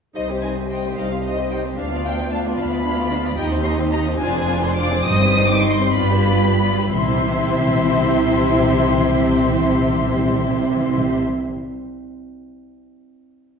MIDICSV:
0, 0, Header, 1, 8, 480
1, 0, Start_track
1, 0, Tempo, 537634
1, 136, Time_signature, 6, 3, 24, 8
1, 3011, Tempo, 559180
1, 4451, Tempo, 612245
1, 5411, Tempo, 648649
1, 6371, Tempo, 628931
1, 10967, End_track
2, 0, Start_track
2, 0, Title_t, "Violin section"
2, 0, Program_c, 0, 48
2, 135, Note_on_c, 0, 75, 51
2, 206, Note_off_c, 0, 75, 0
2, 378, Note_on_c, 0, 80, 48
2, 449, Note_off_c, 0, 80, 0
2, 634, Note_on_c, 0, 79, 45
2, 871, Note_off_c, 0, 79, 0
2, 872, Note_on_c, 0, 77, 53
2, 1107, Note_off_c, 0, 77, 0
2, 1116, Note_on_c, 0, 75, 52
2, 1347, Note_on_c, 0, 79, 54
2, 1348, Note_off_c, 0, 75, 0
2, 1419, Note_off_c, 0, 79, 0
2, 1592, Note_on_c, 0, 77, 58
2, 1825, Note_off_c, 0, 77, 0
2, 1829, Note_on_c, 0, 79, 61
2, 2062, Note_on_c, 0, 81, 56
2, 2066, Note_off_c, 0, 79, 0
2, 2134, Note_off_c, 0, 81, 0
2, 2296, Note_on_c, 0, 83, 65
2, 2994, Note_off_c, 0, 83, 0
2, 3008, Note_on_c, 0, 79, 72
2, 3077, Note_off_c, 0, 79, 0
2, 3234, Note_on_c, 0, 84, 75
2, 3302, Note_off_c, 0, 84, 0
2, 3475, Note_on_c, 0, 82, 77
2, 3544, Note_off_c, 0, 82, 0
2, 3713, Note_on_c, 0, 80, 93
2, 4069, Note_off_c, 0, 80, 0
2, 4083, Note_on_c, 0, 84, 86
2, 4192, Note_on_c, 0, 86, 91
2, 4204, Note_off_c, 0, 84, 0
2, 4441, Note_off_c, 0, 86, 0
2, 4442, Note_on_c, 0, 87, 102
2, 4797, Note_off_c, 0, 87, 0
2, 4802, Note_on_c, 0, 86, 95
2, 4908, Note_on_c, 0, 84, 97
2, 4921, Note_off_c, 0, 86, 0
2, 5151, Note_on_c, 0, 83, 95
2, 5155, Note_off_c, 0, 84, 0
2, 5882, Note_off_c, 0, 83, 0
2, 5897, Note_on_c, 0, 84, 73
2, 9112, Note_off_c, 0, 84, 0
2, 10967, End_track
3, 0, Start_track
3, 0, Title_t, "Violin section"
3, 0, Program_c, 1, 48
3, 136, Note_on_c, 1, 72, 33
3, 139, Note_on_c, 1, 75, 35
3, 252, Note_off_c, 1, 72, 0
3, 253, Note_off_c, 1, 75, 0
3, 262, Note_on_c, 1, 67, 34
3, 262, Note_on_c, 1, 72, 31
3, 368, Note_off_c, 1, 72, 0
3, 379, Note_on_c, 1, 72, 29
3, 381, Note_on_c, 1, 75, 30
3, 385, Note_off_c, 1, 67, 0
3, 493, Note_off_c, 1, 72, 0
3, 501, Note_on_c, 1, 67, 32
3, 504, Note_on_c, 1, 72, 31
3, 506, Note_off_c, 1, 75, 0
3, 615, Note_off_c, 1, 72, 0
3, 625, Note_on_c, 1, 72, 29
3, 625, Note_on_c, 1, 75, 30
3, 628, Note_off_c, 1, 67, 0
3, 736, Note_off_c, 1, 72, 0
3, 741, Note_off_c, 1, 75, 0
3, 746, Note_on_c, 1, 67, 30
3, 746, Note_on_c, 1, 72, 26
3, 849, Note_off_c, 1, 72, 0
3, 860, Note_on_c, 1, 72, 35
3, 861, Note_on_c, 1, 75, 35
3, 871, Note_off_c, 1, 67, 0
3, 974, Note_off_c, 1, 72, 0
3, 985, Note_on_c, 1, 67, 30
3, 985, Note_on_c, 1, 72, 29
3, 987, Note_off_c, 1, 75, 0
3, 1094, Note_off_c, 1, 72, 0
3, 1102, Note_on_c, 1, 75, 34
3, 1105, Note_on_c, 1, 72, 33
3, 1109, Note_off_c, 1, 67, 0
3, 1209, Note_off_c, 1, 72, 0
3, 1218, Note_off_c, 1, 75, 0
3, 1220, Note_on_c, 1, 72, 31
3, 1221, Note_on_c, 1, 67, 31
3, 1337, Note_off_c, 1, 72, 0
3, 1345, Note_off_c, 1, 67, 0
3, 1348, Note_on_c, 1, 72, 32
3, 1348, Note_on_c, 1, 75, 32
3, 1456, Note_off_c, 1, 72, 0
3, 1464, Note_on_c, 1, 67, 35
3, 1466, Note_on_c, 1, 72, 35
3, 1469, Note_off_c, 1, 75, 0
3, 1587, Note_off_c, 1, 67, 0
3, 1588, Note_off_c, 1, 72, 0
3, 1593, Note_on_c, 1, 62, 41
3, 1593, Note_on_c, 1, 77, 36
3, 1703, Note_off_c, 1, 62, 0
3, 1703, Note_off_c, 1, 77, 0
3, 1714, Note_on_c, 1, 65, 36
3, 1715, Note_on_c, 1, 74, 39
3, 1831, Note_off_c, 1, 65, 0
3, 1831, Note_off_c, 1, 74, 0
3, 1833, Note_on_c, 1, 77, 34
3, 1835, Note_on_c, 1, 62, 30
3, 1950, Note_off_c, 1, 77, 0
3, 1951, Note_off_c, 1, 62, 0
3, 1955, Note_on_c, 1, 65, 32
3, 1956, Note_on_c, 1, 74, 35
3, 2069, Note_on_c, 1, 62, 34
3, 2069, Note_on_c, 1, 77, 34
3, 2070, Note_off_c, 1, 65, 0
3, 2070, Note_off_c, 1, 74, 0
3, 2177, Note_off_c, 1, 62, 0
3, 2177, Note_off_c, 1, 77, 0
3, 2187, Note_on_c, 1, 65, 36
3, 2188, Note_on_c, 1, 74, 35
3, 2303, Note_on_c, 1, 62, 39
3, 2304, Note_off_c, 1, 65, 0
3, 2304, Note_off_c, 1, 74, 0
3, 2304, Note_on_c, 1, 77, 42
3, 2420, Note_off_c, 1, 62, 0
3, 2421, Note_off_c, 1, 77, 0
3, 2430, Note_on_c, 1, 65, 36
3, 2431, Note_on_c, 1, 74, 36
3, 2542, Note_off_c, 1, 65, 0
3, 2542, Note_on_c, 1, 62, 39
3, 2543, Note_off_c, 1, 74, 0
3, 2543, Note_on_c, 1, 77, 36
3, 2649, Note_off_c, 1, 62, 0
3, 2650, Note_off_c, 1, 77, 0
3, 2655, Note_on_c, 1, 65, 41
3, 2656, Note_on_c, 1, 74, 39
3, 2773, Note_off_c, 1, 65, 0
3, 2773, Note_off_c, 1, 74, 0
3, 2781, Note_on_c, 1, 62, 46
3, 2783, Note_on_c, 1, 77, 43
3, 2895, Note_off_c, 1, 62, 0
3, 2896, Note_off_c, 1, 77, 0
3, 2897, Note_on_c, 1, 74, 41
3, 2901, Note_on_c, 1, 65, 41
3, 3014, Note_off_c, 1, 74, 0
3, 3016, Note_off_c, 1, 65, 0
3, 3021, Note_on_c, 1, 75, 52
3, 3022, Note_on_c, 1, 63, 55
3, 3125, Note_off_c, 1, 63, 0
3, 3125, Note_off_c, 1, 75, 0
3, 3142, Note_on_c, 1, 67, 48
3, 3143, Note_on_c, 1, 72, 49
3, 3252, Note_off_c, 1, 67, 0
3, 3253, Note_off_c, 1, 72, 0
3, 3254, Note_on_c, 1, 63, 45
3, 3257, Note_on_c, 1, 75, 47
3, 3367, Note_off_c, 1, 63, 0
3, 3369, Note_off_c, 1, 75, 0
3, 3372, Note_on_c, 1, 67, 51
3, 3373, Note_on_c, 1, 72, 47
3, 3483, Note_on_c, 1, 63, 46
3, 3485, Note_off_c, 1, 67, 0
3, 3485, Note_on_c, 1, 75, 52
3, 3486, Note_off_c, 1, 72, 0
3, 3592, Note_off_c, 1, 63, 0
3, 3593, Note_off_c, 1, 75, 0
3, 3608, Note_on_c, 1, 72, 44
3, 3610, Note_on_c, 1, 67, 44
3, 3720, Note_off_c, 1, 72, 0
3, 3723, Note_off_c, 1, 67, 0
3, 3730, Note_on_c, 1, 72, 53
3, 3732, Note_on_c, 1, 74, 57
3, 3832, Note_off_c, 1, 72, 0
3, 3836, Note_off_c, 1, 74, 0
3, 3842, Note_on_c, 1, 68, 50
3, 3843, Note_on_c, 1, 72, 48
3, 3958, Note_off_c, 1, 72, 0
3, 3960, Note_off_c, 1, 68, 0
3, 3968, Note_on_c, 1, 74, 52
3, 3969, Note_on_c, 1, 72, 53
3, 4080, Note_off_c, 1, 72, 0
3, 4084, Note_off_c, 1, 74, 0
3, 4089, Note_on_c, 1, 68, 54
3, 4090, Note_on_c, 1, 72, 51
3, 4201, Note_off_c, 1, 72, 0
3, 4207, Note_off_c, 1, 68, 0
3, 4208, Note_on_c, 1, 74, 57
3, 4211, Note_on_c, 1, 72, 52
3, 4320, Note_off_c, 1, 74, 0
3, 4322, Note_off_c, 1, 72, 0
3, 4336, Note_on_c, 1, 68, 53
3, 4338, Note_on_c, 1, 72, 55
3, 4451, Note_off_c, 1, 72, 0
3, 4456, Note_off_c, 1, 68, 0
3, 4461, Note_on_c, 1, 72, 60
3, 4461, Note_on_c, 1, 75, 66
3, 4564, Note_off_c, 1, 72, 0
3, 4564, Note_off_c, 1, 75, 0
3, 4581, Note_on_c, 1, 67, 57
3, 4581, Note_on_c, 1, 72, 61
3, 4678, Note_off_c, 1, 72, 0
3, 4687, Note_on_c, 1, 72, 54
3, 4690, Note_on_c, 1, 75, 52
3, 4691, Note_off_c, 1, 67, 0
3, 4798, Note_off_c, 1, 72, 0
3, 4805, Note_off_c, 1, 75, 0
3, 4807, Note_on_c, 1, 67, 52
3, 4808, Note_on_c, 1, 72, 51
3, 4912, Note_off_c, 1, 72, 0
3, 4921, Note_on_c, 1, 72, 49
3, 4921, Note_on_c, 1, 75, 50
3, 4923, Note_off_c, 1, 67, 0
3, 5030, Note_off_c, 1, 72, 0
3, 5032, Note_off_c, 1, 75, 0
3, 5040, Note_on_c, 1, 67, 48
3, 5040, Note_on_c, 1, 72, 47
3, 5157, Note_on_c, 1, 71, 60
3, 5157, Note_on_c, 1, 74, 53
3, 5161, Note_off_c, 1, 67, 0
3, 5161, Note_off_c, 1, 72, 0
3, 5271, Note_off_c, 1, 71, 0
3, 5274, Note_off_c, 1, 74, 0
3, 5280, Note_on_c, 1, 71, 50
3, 5284, Note_on_c, 1, 67, 49
3, 5401, Note_off_c, 1, 71, 0
3, 5409, Note_on_c, 1, 74, 49
3, 5410, Note_on_c, 1, 71, 54
3, 5411, Note_off_c, 1, 67, 0
3, 5520, Note_off_c, 1, 71, 0
3, 5528, Note_on_c, 1, 67, 51
3, 5529, Note_on_c, 1, 71, 49
3, 5532, Note_off_c, 1, 74, 0
3, 5649, Note_off_c, 1, 71, 0
3, 5655, Note_off_c, 1, 67, 0
3, 5655, Note_on_c, 1, 74, 45
3, 5657, Note_on_c, 1, 71, 43
3, 5770, Note_off_c, 1, 71, 0
3, 5771, Note_off_c, 1, 74, 0
3, 5777, Note_on_c, 1, 67, 41
3, 5779, Note_on_c, 1, 71, 42
3, 5891, Note_off_c, 1, 67, 0
3, 5899, Note_on_c, 1, 76, 62
3, 5900, Note_off_c, 1, 71, 0
3, 5900, Note_on_c, 1, 67, 59
3, 9115, Note_off_c, 1, 67, 0
3, 9115, Note_off_c, 1, 76, 0
3, 10967, End_track
4, 0, Start_track
4, 0, Title_t, "French horn section"
4, 0, Program_c, 2, 60
4, 133, Note_on_c, 2, 60, 43
4, 135, Note_on_c, 2, 67, 42
4, 1553, Note_off_c, 2, 60, 0
4, 1554, Note_off_c, 2, 67, 0
4, 1587, Note_on_c, 2, 65, 54
4, 1589, Note_on_c, 2, 59, 56
4, 2974, Note_off_c, 2, 65, 0
4, 2975, Note_off_c, 2, 59, 0
4, 3002, Note_on_c, 2, 60, 68
4, 3006, Note_on_c, 2, 63, 63
4, 3681, Note_off_c, 2, 63, 0
4, 3716, Note_on_c, 2, 62, 73
4, 4416, Note_off_c, 2, 62, 0
4, 4451, Note_on_c, 2, 63, 84
4, 5126, Note_off_c, 2, 60, 0
4, 5130, Note_off_c, 2, 63, 0
4, 5161, Note_on_c, 2, 62, 70
4, 5162, Note_on_c, 2, 65, 72
4, 5628, Note_off_c, 2, 62, 0
4, 5628, Note_off_c, 2, 65, 0
4, 5897, Note_on_c, 2, 64, 64
4, 5900, Note_on_c, 2, 60, 72
4, 9113, Note_off_c, 2, 64, 0
4, 9115, Note_off_c, 2, 60, 0
4, 10967, End_track
5, 0, Start_track
5, 0, Title_t, "Viola section"
5, 0, Program_c, 3, 48
5, 131, Note_on_c, 3, 55, 37
5, 134, Note_on_c, 3, 63, 37
5, 249, Note_off_c, 3, 55, 0
5, 250, Note_off_c, 3, 63, 0
5, 261, Note_on_c, 3, 60, 33
5, 263, Note_off_c, 3, 60, 0
5, 263, Note_on_c, 3, 60, 29
5, 386, Note_off_c, 3, 60, 0
5, 387, Note_on_c, 3, 63, 28
5, 388, Note_on_c, 3, 55, 32
5, 506, Note_on_c, 3, 60, 30
5, 509, Note_off_c, 3, 60, 0
5, 509, Note_off_c, 3, 63, 0
5, 509, Note_on_c, 3, 60, 28
5, 510, Note_off_c, 3, 55, 0
5, 626, Note_on_c, 3, 63, 32
5, 627, Note_on_c, 3, 55, 27
5, 631, Note_off_c, 3, 60, 0
5, 742, Note_off_c, 3, 55, 0
5, 742, Note_off_c, 3, 63, 0
5, 750, Note_on_c, 3, 60, 30
5, 752, Note_off_c, 3, 60, 0
5, 752, Note_on_c, 3, 60, 31
5, 869, Note_on_c, 3, 55, 36
5, 869, Note_on_c, 3, 63, 38
5, 874, Note_off_c, 3, 60, 0
5, 988, Note_on_c, 3, 60, 28
5, 990, Note_off_c, 3, 60, 0
5, 990, Note_on_c, 3, 60, 29
5, 991, Note_off_c, 3, 63, 0
5, 992, Note_off_c, 3, 55, 0
5, 1102, Note_on_c, 3, 55, 33
5, 1103, Note_on_c, 3, 63, 31
5, 1111, Note_off_c, 3, 60, 0
5, 1218, Note_off_c, 3, 55, 0
5, 1218, Note_off_c, 3, 63, 0
5, 1223, Note_on_c, 3, 60, 35
5, 1224, Note_off_c, 3, 60, 0
5, 1224, Note_on_c, 3, 60, 35
5, 1342, Note_on_c, 3, 55, 33
5, 1342, Note_on_c, 3, 63, 33
5, 1347, Note_off_c, 3, 60, 0
5, 1456, Note_on_c, 3, 60, 37
5, 1457, Note_off_c, 3, 60, 0
5, 1457, Note_on_c, 3, 60, 35
5, 1466, Note_off_c, 3, 55, 0
5, 1466, Note_off_c, 3, 63, 0
5, 1578, Note_on_c, 3, 62, 43
5, 1579, Note_off_c, 3, 62, 0
5, 1579, Note_on_c, 3, 62, 44
5, 1584, Note_off_c, 3, 60, 0
5, 1696, Note_off_c, 3, 62, 0
5, 1699, Note_on_c, 3, 59, 35
5, 1700, Note_off_c, 3, 59, 0
5, 1700, Note_on_c, 3, 59, 39
5, 1821, Note_on_c, 3, 62, 34
5, 1823, Note_off_c, 3, 62, 0
5, 1823, Note_on_c, 3, 62, 34
5, 1824, Note_off_c, 3, 59, 0
5, 1937, Note_on_c, 3, 59, 37
5, 1939, Note_off_c, 3, 59, 0
5, 1939, Note_on_c, 3, 59, 36
5, 1945, Note_off_c, 3, 62, 0
5, 2060, Note_on_c, 3, 62, 36
5, 2061, Note_off_c, 3, 62, 0
5, 2061, Note_on_c, 3, 62, 40
5, 2062, Note_off_c, 3, 59, 0
5, 2173, Note_off_c, 3, 62, 0
5, 2184, Note_on_c, 3, 59, 37
5, 2185, Note_off_c, 3, 59, 0
5, 2185, Note_on_c, 3, 59, 41
5, 2302, Note_off_c, 3, 59, 0
5, 2306, Note_on_c, 3, 62, 45
5, 2308, Note_off_c, 3, 62, 0
5, 2308, Note_on_c, 3, 62, 44
5, 2423, Note_off_c, 3, 62, 0
5, 2424, Note_on_c, 3, 59, 36
5, 2425, Note_off_c, 3, 59, 0
5, 2425, Note_on_c, 3, 59, 38
5, 2539, Note_off_c, 3, 59, 0
5, 2544, Note_on_c, 3, 62, 40
5, 2545, Note_off_c, 3, 62, 0
5, 2545, Note_on_c, 3, 62, 44
5, 2650, Note_off_c, 3, 62, 0
5, 2660, Note_on_c, 3, 59, 41
5, 2775, Note_off_c, 3, 59, 0
5, 2775, Note_on_c, 3, 62, 39
5, 2777, Note_off_c, 3, 62, 0
5, 2777, Note_on_c, 3, 62, 45
5, 2893, Note_off_c, 3, 62, 0
5, 2893, Note_on_c, 3, 59, 42
5, 2895, Note_off_c, 3, 59, 0
5, 2895, Note_on_c, 3, 59, 49
5, 3013, Note_off_c, 3, 59, 0
5, 3013, Note_on_c, 3, 67, 53
5, 3014, Note_on_c, 3, 63, 54
5, 3118, Note_off_c, 3, 63, 0
5, 3120, Note_off_c, 3, 67, 0
5, 3129, Note_on_c, 3, 60, 50
5, 3129, Note_on_c, 3, 63, 46
5, 3237, Note_off_c, 3, 63, 0
5, 3246, Note_off_c, 3, 60, 0
5, 3247, Note_on_c, 3, 63, 51
5, 3251, Note_on_c, 3, 67, 51
5, 3361, Note_off_c, 3, 63, 0
5, 3366, Note_off_c, 3, 67, 0
5, 3368, Note_on_c, 3, 60, 48
5, 3372, Note_on_c, 3, 63, 49
5, 3475, Note_off_c, 3, 63, 0
5, 3484, Note_off_c, 3, 60, 0
5, 3485, Note_on_c, 3, 63, 54
5, 3486, Note_on_c, 3, 67, 49
5, 3593, Note_off_c, 3, 63, 0
5, 3594, Note_off_c, 3, 67, 0
5, 3603, Note_on_c, 3, 63, 49
5, 3604, Note_on_c, 3, 60, 53
5, 3720, Note_off_c, 3, 60, 0
5, 3720, Note_off_c, 3, 63, 0
5, 3722, Note_on_c, 3, 62, 53
5, 3722, Note_on_c, 3, 65, 59
5, 3831, Note_off_c, 3, 62, 0
5, 3831, Note_off_c, 3, 65, 0
5, 3841, Note_on_c, 3, 62, 54
5, 3843, Note_on_c, 3, 60, 53
5, 3953, Note_off_c, 3, 62, 0
5, 3960, Note_off_c, 3, 60, 0
5, 3963, Note_on_c, 3, 65, 56
5, 3964, Note_on_c, 3, 62, 52
5, 4071, Note_off_c, 3, 62, 0
5, 4081, Note_on_c, 3, 60, 54
5, 4081, Note_on_c, 3, 62, 60
5, 4082, Note_off_c, 3, 65, 0
5, 4198, Note_off_c, 3, 62, 0
5, 4203, Note_off_c, 3, 60, 0
5, 4208, Note_on_c, 3, 62, 55
5, 4208, Note_on_c, 3, 65, 53
5, 4318, Note_off_c, 3, 62, 0
5, 4320, Note_off_c, 3, 65, 0
5, 4328, Note_on_c, 3, 60, 57
5, 4328, Note_on_c, 3, 62, 55
5, 4452, Note_off_c, 3, 60, 0
5, 4452, Note_off_c, 3, 62, 0
5, 4453, Note_on_c, 3, 55, 65
5, 4456, Note_on_c, 3, 63, 70
5, 4560, Note_off_c, 3, 55, 0
5, 4561, Note_off_c, 3, 63, 0
5, 4568, Note_on_c, 3, 60, 58
5, 4569, Note_off_c, 3, 60, 0
5, 4569, Note_on_c, 3, 60, 59
5, 4680, Note_on_c, 3, 55, 53
5, 4683, Note_on_c, 3, 63, 56
5, 4685, Note_off_c, 3, 60, 0
5, 4797, Note_on_c, 3, 60, 49
5, 4798, Note_off_c, 3, 60, 0
5, 4798, Note_on_c, 3, 60, 59
5, 4800, Note_off_c, 3, 55, 0
5, 4801, Note_off_c, 3, 63, 0
5, 4911, Note_on_c, 3, 63, 52
5, 4912, Note_on_c, 3, 55, 58
5, 4919, Note_off_c, 3, 60, 0
5, 5027, Note_off_c, 3, 63, 0
5, 5028, Note_off_c, 3, 55, 0
5, 5035, Note_on_c, 3, 60, 54
5, 5159, Note_off_c, 3, 60, 0
5, 5159, Note_on_c, 3, 65, 64
5, 5160, Note_on_c, 3, 59, 65
5, 5275, Note_off_c, 3, 59, 0
5, 5275, Note_off_c, 3, 65, 0
5, 5286, Note_on_c, 3, 62, 58
5, 5286, Note_on_c, 3, 67, 56
5, 5410, Note_on_c, 3, 65, 53
5, 5411, Note_on_c, 3, 59, 52
5, 5412, Note_off_c, 3, 62, 0
5, 5412, Note_off_c, 3, 67, 0
5, 5530, Note_on_c, 3, 62, 55
5, 5530, Note_on_c, 3, 67, 52
5, 5532, Note_off_c, 3, 65, 0
5, 5533, Note_off_c, 3, 59, 0
5, 5656, Note_off_c, 3, 62, 0
5, 5656, Note_off_c, 3, 67, 0
5, 5656, Note_on_c, 3, 59, 46
5, 5656, Note_on_c, 3, 65, 45
5, 5772, Note_off_c, 3, 59, 0
5, 5772, Note_off_c, 3, 65, 0
5, 5776, Note_on_c, 3, 62, 46
5, 5776, Note_on_c, 3, 67, 49
5, 5897, Note_on_c, 3, 64, 68
5, 5898, Note_off_c, 3, 62, 0
5, 5898, Note_on_c, 3, 60, 70
5, 5899, Note_off_c, 3, 67, 0
5, 9112, Note_off_c, 3, 64, 0
5, 9113, Note_off_c, 3, 60, 0
5, 10967, End_track
6, 0, Start_track
6, 0, Title_t, "Timpani"
6, 0, Program_c, 4, 47
6, 4453, Note_on_c, 4, 43, 68
6, 5131, Note_off_c, 4, 43, 0
6, 5900, Note_on_c, 4, 48, 81
6, 5951, Note_off_c, 4, 48, 0
6, 5951, Note_on_c, 4, 48, 69
6, 6005, Note_off_c, 4, 48, 0
6, 6008, Note_on_c, 4, 48, 75
6, 6062, Note_off_c, 4, 48, 0
6, 6065, Note_on_c, 4, 48, 76
6, 6118, Note_off_c, 4, 48, 0
6, 6118, Note_on_c, 4, 48, 74
6, 6172, Note_off_c, 4, 48, 0
6, 6174, Note_on_c, 4, 48, 68
6, 6227, Note_off_c, 4, 48, 0
6, 6228, Note_on_c, 4, 48, 79
6, 6281, Note_off_c, 4, 48, 0
6, 6284, Note_on_c, 4, 48, 70
6, 6333, Note_off_c, 4, 48, 0
6, 6333, Note_on_c, 4, 48, 80
6, 6384, Note_off_c, 4, 48, 0
6, 6384, Note_on_c, 4, 48, 74
6, 6440, Note_off_c, 4, 48, 0
6, 6442, Note_on_c, 4, 48, 74
6, 6497, Note_off_c, 4, 48, 0
6, 6499, Note_on_c, 4, 48, 71
6, 6555, Note_off_c, 4, 48, 0
6, 6556, Note_on_c, 4, 48, 75
6, 6611, Note_off_c, 4, 48, 0
6, 6611, Note_on_c, 4, 48, 68
6, 6666, Note_off_c, 4, 48, 0
6, 6666, Note_on_c, 4, 48, 76
6, 6721, Note_off_c, 4, 48, 0
6, 6722, Note_on_c, 4, 48, 76
6, 6778, Note_off_c, 4, 48, 0
6, 6785, Note_on_c, 4, 48, 83
6, 6840, Note_off_c, 4, 48, 0
6, 6843, Note_on_c, 4, 48, 65
6, 6895, Note_off_c, 4, 48, 0
6, 6895, Note_on_c, 4, 48, 77
6, 6950, Note_off_c, 4, 48, 0
6, 6954, Note_on_c, 4, 48, 77
6, 7007, Note_off_c, 4, 48, 0
6, 7007, Note_on_c, 4, 48, 70
6, 7058, Note_off_c, 4, 48, 0
6, 7058, Note_on_c, 4, 48, 69
6, 7109, Note_off_c, 4, 48, 0
6, 7109, Note_on_c, 4, 48, 85
6, 7161, Note_off_c, 4, 48, 0
6, 7161, Note_on_c, 4, 48, 66
6, 7216, Note_off_c, 4, 48, 0
6, 7221, Note_on_c, 4, 48, 86
6, 7276, Note_off_c, 4, 48, 0
6, 7276, Note_on_c, 4, 48, 71
6, 7331, Note_off_c, 4, 48, 0
6, 7333, Note_on_c, 4, 48, 83
6, 7388, Note_off_c, 4, 48, 0
6, 7391, Note_on_c, 4, 48, 72
6, 7444, Note_off_c, 4, 48, 0
6, 7444, Note_on_c, 4, 48, 78
6, 7498, Note_off_c, 4, 48, 0
6, 7498, Note_on_c, 4, 48, 71
6, 7554, Note_off_c, 4, 48, 0
6, 7557, Note_on_c, 4, 48, 79
6, 7613, Note_off_c, 4, 48, 0
6, 7614, Note_on_c, 4, 48, 67
6, 7669, Note_off_c, 4, 48, 0
6, 7672, Note_on_c, 4, 48, 74
6, 7726, Note_off_c, 4, 48, 0
6, 7726, Note_on_c, 4, 48, 74
6, 7781, Note_off_c, 4, 48, 0
6, 7782, Note_on_c, 4, 48, 78
6, 7835, Note_off_c, 4, 48, 0
6, 7835, Note_on_c, 4, 48, 74
6, 7890, Note_off_c, 4, 48, 0
6, 7896, Note_on_c, 4, 48, 71
6, 7951, Note_off_c, 4, 48, 0
6, 7957, Note_on_c, 4, 48, 68
6, 8012, Note_off_c, 4, 48, 0
6, 8017, Note_on_c, 4, 48, 78
6, 8069, Note_off_c, 4, 48, 0
6, 8069, Note_on_c, 4, 48, 67
6, 8124, Note_off_c, 4, 48, 0
6, 8126, Note_on_c, 4, 48, 72
6, 8182, Note_off_c, 4, 48, 0
6, 8183, Note_on_c, 4, 48, 67
6, 8238, Note_off_c, 4, 48, 0
6, 8242, Note_on_c, 4, 48, 79
6, 8296, Note_off_c, 4, 48, 0
6, 8296, Note_on_c, 4, 48, 70
6, 8349, Note_off_c, 4, 48, 0
6, 8349, Note_on_c, 4, 48, 83
6, 8404, Note_off_c, 4, 48, 0
6, 8407, Note_on_c, 4, 48, 75
6, 8462, Note_off_c, 4, 48, 0
6, 8466, Note_on_c, 4, 48, 77
6, 8521, Note_off_c, 4, 48, 0
6, 8524, Note_on_c, 4, 48, 77
6, 8579, Note_off_c, 4, 48, 0
6, 8583, Note_on_c, 4, 48, 77
6, 8637, Note_off_c, 4, 48, 0
6, 8637, Note_on_c, 4, 48, 67
6, 8692, Note_off_c, 4, 48, 0
6, 8696, Note_on_c, 4, 48, 74
6, 8751, Note_off_c, 4, 48, 0
6, 8751, Note_on_c, 4, 48, 74
6, 8806, Note_off_c, 4, 48, 0
6, 8806, Note_on_c, 4, 48, 76
6, 8860, Note_off_c, 4, 48, 0
6, 8860, Note_on_c, 4, 48, 67
6, 8915, Note_off_c, 4, 48, 0
6, 8915, Note_on_c, 4, 48, 72
6, 8968, Note_off_c, 4, 48, 0
6, 8968, Note_on_c, 4, 48, 71
6, 9017, Note_off_c, 4, 48, 0
6, 9017, Note_on_c, 4, 48, 73
6, 9070, Note_off_c, 4, 48, 0
6, 9070, Note_on_c, 4, 48, 70
6, 9125, Note_off_c, 4, 48, 0
6, 10967, End_track
7, 0, Start_track
7, 0, Title_t, "Cello section"
7, 0, Program_c, 5, 48
7, 133, Note_on_c, 5, 36, 44
7, 787, Note_off_c, 5, 36, 0
7, 871, Note_on_c, 5, 36, 48
7, 1504, Note_off_c, 5, 36, 0
7, 1588, Note_on_c, 5, 38, 46
7, 2218, Note_off_c, 5, 38, 0
7, 2301, Note_on_c, 5, 38, 61
7, 2926, Note_off_c, 5, 38, 0
7, 3009, Note_on_c, 5, 39, 63
7, 3633, Note_off_c, 5, 39, 0
7, 3713, Note_on_c, 5, 41, 77
7, 4360, Note_off_c, 5, 41, 0
7, 4448, Note_on_c, 5, 43, 83
7, 5074, Note_off_c, 5, 43, 0
7, 5156, Note_on_c, 5, 43, 76
7, 5814, Note_off_c, 5, 43, 0
7, 5896, Note_on_c, 5, 48, 69
7, 9112, Note_off_c, 5, 48, 0
7, 10967, End_track
8, 0, Start_track
8, 0, Title_t, "Double bass section"
8, 0, Program_c, 6, 48
8, 136, Note_on_c, 6, 36, 34
8, 788, Note_off_c, 6, 36, 0
8, 872, Note_on_c, 6, 36, 39
8, 1504, Note_off_c, 6, 36, 0
8, 1590, Note_on_c, 6, 38, 47
8, 2218, Note_off_c, 6, 38, 0
8, 2302, Note_on_c, 6, 38, 49
8, 2926, Note_off_c, 6, 38, 0
8, 3008, Note_on_c, 6, 39, 58
8, 3633, Note_off_c, 6, 39, 0
8, 3713, Note_on_c, 6, 29, 65
8, 4360, Note_off_c, 6, 29, 0
8, 4451, Note_on_c, 6, 31, 72
8, 5076, Note_off_c, 6, 31, 0
8, 5160, Note_on_c, 6, 31, 63
8, 5816, Note_off_c, 6, 31, 0
8, 5898, Note_on_c, 6, 36, 65
8, 9113, Note_off_c, 6, 36, 0
8, 10967, End_track
0, 0, End_of_file